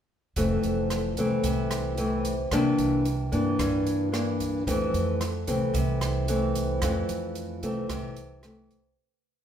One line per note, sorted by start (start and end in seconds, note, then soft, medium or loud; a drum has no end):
0.36 0.62 F1 medium
0.36 1.41 F2 soft
0.36 1.13 E3 soft
0.36 1.13 A3 soft
0.36 1.13 C4 medium
0.36 kick soft
0.36 closed hi-hat soft
0.63 1.13 F1 medium
0.63 closed hi-hat soft
0.90 cross-stick soft
0.90 closed hi-hat soft
1.17 1.42 C2 medium
1.17 1.94 E3 medium
1.17 1.94 A3 medium
1.17 1.94 C4 medium
1.17 kick soft
1.17 closed hi-hat soft
1.44 2.47 C2 medium
1.44 2.49 C3 soft
1.44 kick medium
1.44 closed hi-hat medium
1.71 cross-stick soft
1.71 closed hi-hat soft
1.97 2.32 E3 soft
1.97 2.33 A3 soft
1.97 2.33 C4 medium
1.97 closed hi-hat soft
2.25 kick soft
2.25 closed hi-hat soft
2.51 2.76 C2 medium
2.51 3.57 C3 medium
2.51 3.05 E3 medium
2.51 3.05 A#3 soft
2.51 3.05 D4 medium
2.51 kick soft
2.51 cross-stick medium
2.51 closed hi-hat soft
2.78 3.28 C2 medium
2.78 closed hi-hat soft
3.05 closed hi-hat soft
3.32 3.57 G2 medium
3.32 4.08 E3 medium
3.32 4.08 A#3 medium
3.32 4.09 D4 medium
3.32 kick soft
3.32 closed hi-hat soft
3.59 4.64 G2 soft
3.59 4.63 G2 medium
3.59 kick soft
3.59 cross-stick medium
3.59 closed hi-hat soft
3.87 closed hi-hat soft
4.12 4.62 E3 soft
4.12 4.62 A#3 medium
4.12 4.63 D4 medium
4.12 cross-stick soft
4.12 closed hi-hat soft
4.40 kick soft
4.40 closed hi-hat soft
4.67 5.72 F2 soft
4.67 4.92 F2 medium
4.67 5.20 E3 medium
4.67 5.21 A3 soft
4.67 5.21 C4 medium
4.67 kick medium
4.67 closed hi-hat soft
4.94 5.44 F2 medium
4.94 closed hi-hat soft
5.21 cross-stick soft
5.21 closed hi-hat soft
5.47 5.73 C2 medium
5.47 6.24 E3 medium
5.47 6.24 A3 soft
5.47 6.24 C4 medium
5.47 kick soft
5.47 closed hi-hat soft
5.74 6.78 C2 medium
5.74 6.79 C3 soft
5.74 kick medium
5.74 closed hi-hat soft
6.01 cross-stick soft
6.01 closed hi-hat soft
6.28 6.78 E3 medium
6.28 6.78 A3 medium
6.28 6.78 C4 medium
6.28 closed hi-hat soft
6.55 kick soft
6.55 closed hi-hat soft
6.82 7.07 F2 medium
6.82 7.87 F2 medium
6.82 7.59 E3 medium
6.82 7.59 A3 soft
6.82 7.59 C4 medium
6.82 kick medium
6.82 cross-stick soft
6.82 closed hi-hat medium
7.09 7.59 F2 medium
7.09 closed hi-hat soft
7.35 closed hi-hat soft
7.63 7.88 C2 medium
7.63 8.39 E3 medium
7.63 8.39 A3 medium
7.63 8.40 C4 medium
7.63 kick soft
7.63 closed hi-hat soft
7.89 8.93 C2 medium
7.89 8.94 C3 soft
7.89 kick soft
7.89 cross-stick medium
7.89 closed hi-hat soft
8.16 closed hi-hat soft
8.43 8.78 E3 soft
8.43 8.78 A3 soft
8.43 8.79 C4 medium
8.43 cross-stick soft
8.43 closed hi-hat soft
8.70 kick soft
8.70 closed hi-hat soft